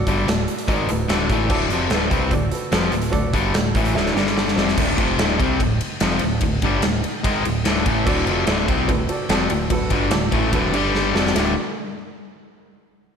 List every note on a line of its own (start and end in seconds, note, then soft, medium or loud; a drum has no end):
0.00 0.19 F#4 loud
0.00 0.20 A4 loud
0.00 0.20 D5 loud
0.07 0.26 G1 medium
0.07 0.27 G2 medium
0.07 0.27 D3 loud
0.07 0.27 G3 medium
0.07 kick loud
0.07 closed hi-hat medium
0.27 0.46 D1 medium
0.27 0.44 D2 medium
0.27 0.44 A2 medium
0.27 0.60 F#4 medium
0.27 0.60 A4 medium
0.27 0.61 D5 medium
0.27 snare loud
0.27 closed hi-hat medium
0.48 closed hi-hat medium
0.58 closed hi-hat medium
0.68 0.87 G#1 medium
0.68 0.88 G#2 medium
0.68 0.88 D#3 medium
0.68 0.89 G#3 loud
0.68 0.84 F#4 medium
0.68 0.85 A4 medium
0.68 0.86 D5 loud
0.68 kick loud
0.68 closed hi-hat medium
0.87 1.08 D1 medium
0.87 1.06 D2 medium
0.87 1.06 A2 medium
0.87 1.04 F#4 medium
0.87 1.05 A4 medium
0.87 1.05 B4 medium
0.87 closed hi-hat medium
1.08 1.28 D1 loud
1.08 1.29 D2 medium
1.08 1.29 A2 medium
1.08 1.30 D3 medium
1.08 1.42 F#4 medium
1.08 1.43 A4 medium
1.08 1.43 D5 loud
1.08 snare loud
1.08 closed hi-hat medium
1.30 1.49 A1 medium
1.30 1.50 A2 medium
1.30 1.51 E3 loud
1.30 1.51 A3 loud
1.30 kick loud
1.30 closed hi-hat medium
1.49 1.69 D1 loud
1.49 1.70 D2 medium
1.49 1.71 A2 medium
1.49 1.71 D3 loud
1.49 1.83 F#4 loud
1.49 1.83 A4 loud
1.49 1.83 D5 loud
1.49 kick loud
1.49 crash loud
1.70 1.89 F1 medium
1.70 1.90 F2 medium
1.70 1.91 C3 medium
1.70 1.91 F3 medium
1.70 closed hi-hat medium
1.90 2.10 D1 loud
1.90 2.11 D2 medium
1.90 2.11 A2 loud
1.90 2.11 D3 loud
1.90 2.24 F#4 medium
1.90 2.25 A4 medium
1.90 2.25 B4 loud
1.90 snare loud
1.90 closed hi-hat medium
2.11 2.30 C2 medium
2.11 2.31 C3 medium
2.11 2.31 G3 medium
2.11 2.32 C4 loud
2.11 kick loud
2.11 closed hi-hat medium
2.31 2.51 D1 medium
2.31 2.49 D2 medium
2.31 2.49 A2 medium
2.31 2.48 F#4 medium
2.31 2.49 A4 medium
2.31 2.49 D5 medium
2.31 kick medium
2.31 closed hi-hat medium
2.51 2.68 F#4 medium
2.51 2.69 A4 medium
2.51 2.69 B4 medium
2.51 closed hi-hat medium
2.72 2.91 F1 medium
2.72 2.91 F2 medium
2.72 2.92 C3 loud
2.72 2.94 F3 medium
2.72 3.05 F#4 medium
2.72 3.06 A4 medium
2.72 3.06 B4 loud
2.72 snare loud
2.72 closed hi-hat medium
2.91 3.12 D1 medium
2.91 3.09 D2 medium
2.91 3.09 A2 medium
2.91 closed hi-hat medium
3.02 closed hi-hat medium
3.10 3.33 D1 medium
3.10 3.30 D2 medium
3.10 3.31 A2 medium
3.10 3.45 F#4 loud
3.10 3.46 A4 loud
3.10 3.46 D5 loud
3.10 kick medium
3.10 closed hi-hat medium
3.33 3.53 G1 medium
3.33 3.54 G2 medium
3.33 3.55 D3 medium
3.33 3.55 G3 loud
3.33 kick loud
3.33 closed hi-hat medium
3.52 3.74 D1 medium
3.52 3.72 D2 medium
3.52 3.72 A2 medium
3.52 3.87 F#4 medium
3.52 3.87 A4 medium
3.52 3.88 D5 medium
3.52 snare loud
3.52 closed hi-hat medium
3.74 3.94 A1 medium
3.74 3.96 A2 medium
3.74 3.96 E3 medium
3.74 3.97 A3 loud
3.74 kick loud
3.74 closed hi-hat medium
3.85 closed hi-hat medium
3.93 4.13 D1 medium
3.93 4.15 D2 medium
3.93 4.11 F#4 medium
3.93 4.12 A4 medium
3.93 4.12 E5 medium
3.93 snare medium
3.97 4.16 A2 medium
3.97 4.15 D3 loud
4.07 snare medium
4.14 4.54 G1 medium
4.14 4.57 G2 medium
4.14 4.57 D3 medium
4.14 4.57 G3 medium
4.14 4.48 D4 medium
4.14 4.48 G4 medium
4.14 4.49 D5 loud
4.14 snare medium
4.27 snare medium
4.38 snare loud
4.48 snare medium
4.55 4.76 F1 medium
4.55 4.77 F2 loud
4.55 4.78 C3 medium
4.55 4.78 F3 loud
4.55 4.73 F#4 medium
4.55 4.73 A4 medium
4.55 4.74 D5 medium
4.55 snare medium
4.68 snare medium
4.77 4.97 D1 loud
4.77 4.98 D2 medium
4.77 4.99 A2 loud
4.77 4.99 D3 medium
4.77 kick loud
4.77 crash loud
4.98 5.17 F1 loud
4.98 5.19 F2 medium
4.98 5.20 C3 medium
4.98 5.20 F3 loud
4.98 kick loud
4.98 ride medium
5.18 5.38 D1 medium
5.18 5.38 D2 medium
5.18 5.39 A2 loud
5.18 5.40 D3 loud
5.18 snare loud
5.18 ride medium
5.38 5.59 C2 medium
5.38 5.59 C3 medium
5.38 5.59 G3 medium
5.38 5.60 C4 loud
5.38 kick loud
5.38 ride medium
5.60 5.79 D1 medium
5.60 5.77 D2 medium
5.60 5.77 A2 medium
5.60 kick medium
5.60 ride loud
5.81 ride medium
6.00 6.20 F1 medium
6.00 6.21 F2 medium
6.00 6.21 C3 medium
6.00 6.22 F3 medium
6.00 snare loud
6.00 ride loud
6.11 snare soft
6.19 6.41 D1 medium
6.19 6.38 D2 medium
6.19 6.38 A2 medium
6.19 ride medium
6.41 6.61 D1 medium
6.41 6.59 D2 medium
6.41 6.59 A2 medium
6.41 kick medium
6.41 ride loud
6.62 6.82 G1 loud
6.62 6.83 G2 medium
6.62 6.84 D3 loud
6.62 6.84 G3 loud
6.62 kick loud
6.62 ride medium
6.82 7.03 D1 medium
6.82 7.00 D2 medium
6.82 7.00 A2 medium
6.82 snare loud
6.82 ride loud
7.04 ride medium
7.23 7.44 G#1 loud
7.23 7.44 G#2 loud
7.23 7.45 D#3 medium
7.23 7.45 G#3 loud
7.23 kick loud
7.23 ride loud
7.45 7.64 D1 medium
7.45 7.62 D2 medium
7.45 7.62 A2 medium
7.45 ride medium
7.64 7.85 D1 medium
7.64 7.84 D2 medium
7.64 7.83 A2 medium
7.64 7.86 D3 loud
7.64 snare loud
7.64 ride loud
7.78 snare soft
7.84 8.05 A1 medium
7.84 8.05 A2 loud
7.84 8.06 E3 loud
7.84 8.06 A3 medium
7.84 kick loud
7.84 ride medium
8.05 8.26 D1 medium
8.05 8.25 D2 medium
8.05 8.26 A2 loud
8.05 8.27 D3 loud
8.05 8.39 F#4 loud
8.05 8.39 A4 medium
8.05 8.39 D5 loud
8.05 kick loud
8.05 crash loud
8.26 8.46 F1 loud
8.26 8.46 F2 medium
8.26 8.47 C3 loud
8.26 8.47 F3 loud
8.26 ride medium
8.46 8.67 D1 loud
8.46 8.67 D2 medium
8.46 8.68 A2 medium
8.46 8.68 D3 loud
8.46 8.80 F#4 medium
8.46 8.80 A4 medium
8.46 8.81 D5 medium
8.46 snare loud
8.46 ride loud
8.68 8.88 C2 loud
8.68 8.88 C3 medium
8.68 8.89 G3 loud
8.68 8.89 C4 loud
8.68 kick loud
8.68 ride medium
8.87 9.08 D1 medium
8.87 9.05 D2 medium
8.87 9.06 A2 medium
8.87 9.04 F#4 medium
8.87 9.05 A4 medium
8.87 9.05 B4 loud
8.87 kick medium
8.87 ride medium
9.09 9.26 F#4 medium
9.09 9.26 A4 medium
9.09 9.27 D5 medium
9.09 ride medium
9.29 9.49 F1 medium
9.29 9.50 F2 loud
9.29 9.50 C3 medium
9.29 9.51 F3 medium
9.29 9.63 F#4 medium
9.29 9.64 A4 medium
9.29 9.64 D5 medium
9.29 snare loud
9.29 ride loud
9.50 9.69 D1 medium
9.50 9.67 D2 medium
9.50 9.67 A2 medium
9.50 ride medium
9.70 9.90 D1 medium
9.70 9.87 D2 medium
9.70 9.87 A2 medium
9.70 10.04 F#4 loud
9.70 10.04 A4 loud
9.70 10.05 B4 loud
9.70 kick medium
9.70 ride loud
9.90 10.10 G1 loud
9.90 10.11 G2 medium
9.90 10.11 D3 loud
9.90 10.12 G3 medium
9.90 kick loud
9.90 ride medium
10.11 10.31 D1 medium
10.11 10.28 D2 medium
10.11 10.29 A2 medium
10.11 10.44 F#4 medium
10.11 10.45 A4 medium
10.11 10.45 D5 medium
10.11 snare loud
10.11 ride loud
10.31 10.52 A1 medium
10.31 10.51 A2 medium
10.31 10.52 E3 loud
10.31 10.53 A3 loud
10.31 kick loud
10.31 ride medium
10.51 10.72 D1 medium
10.51 10.73 D2 medium
10.51 10.74 A2 loud
10.51 10.74 D3 loud
10.51 10.69 F#4 medium
10.51 10.70 A4 medium
10.51 10.70 B4 loud
10.51 kick loud
10.51 ride loud
10.73 11.12 G1 loud
10.73 11.14 G2 medium
10.73 11.15 D3 medium
10.73 11.15 G3 loud
10.73 11.06 D4 medium
10.73 11.07 G4 medium
10.73 11.07 D5 loud
10.73 ride medium
10.95 snare medium
11.14 11.34 F1 medium
11.14 11.35 F2 medium
11.14 11.36 C3 loud
11.14 11.36 F3 loud
11.14 11.31 F#4 medium
11.14 11.31 A4 medium
11.14 11.32 D5 loud
11.14 snare loud
11.27 snare loud
11.35 11.55 D1 medium
11.35 11.52 D2 medium
11.35 11.52 A2 loud
11.35 11.53 D3 loud
11.35 11.55 F#4 medium
11.35 11.55 A4 medium
11.35 11.55 D5 medium
11.35 snare loud
11.35 ride bell medium